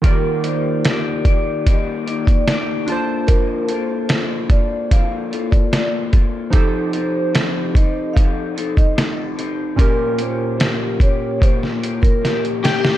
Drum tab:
HH |x-x-x-x-x-xxx-x-|x-x-x-x-x-xxx-x-|x-x-x-x-x-xxx-x-|x-x-x-x-x-xxxxx-|
SD |----o-------o---|----o-------o---|----o-------o---|----o----o--o-oo|
BD |o-----o-o--o----|o-----o-o--o--o-|o-----o-o--o----|o-----o-o--o----|